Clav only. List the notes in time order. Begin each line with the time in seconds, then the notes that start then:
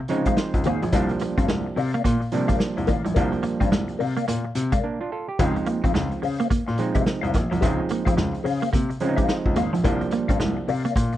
0.09 F3 G#3 C4 D#4 C#5
0.38 C5
0.66 G#4
0.93 F3 G3 A#3 D4
2.32 F3 G3 A#3 D4
3.16 F3 G3 A#3 D4
4.84 A#3 D4
5.01 D4 F4
5.12 F4 A4
5.28 G4
5.39 F3 G#3 C4 D#4
6.78 F3 G#3 C4 D#4
7.62 F3 G#3 C4 D#4
9.01 F3 G#3 C4 C#4
9.09 D#4
9.84 F3 G3 A#3 D4